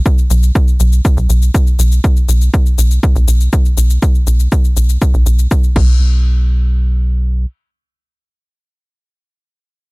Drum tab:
CC |----------------|----------------|--------------x-|----------------|
SH |xxxxxxxxxxxxxxxx|xxxxxxxxxxxxxxxx|xxxxxxxxxxxxxx--|----------------|
BD |o---o---o---o---|o---o---o---o---|o---o---o---o-o-|----------------|

CC |----------------|
SH |----------------|
BD |----------------|